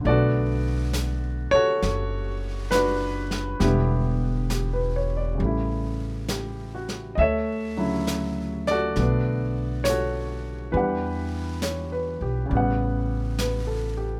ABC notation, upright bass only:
X:1
M:4/4
L:1/8
Q:"Swing" 1/4=68
K:Bm
V:1 name="Upright bass" clef=bass
B,,,3 z F,,,4 | E,,,4 A,,,4 | D,,4 B,,,4 | E,,3 B,,, A,,,4 |]